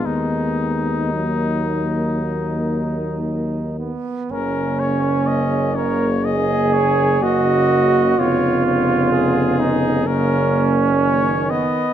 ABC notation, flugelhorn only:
X:1
M:4/4
L:1/8
Q:1/4=62
K:Ebm
V:1 name="Flugelhorn"
E6- E C | [K:F#] C3 A G2 F2 | E3 D C3 B, |]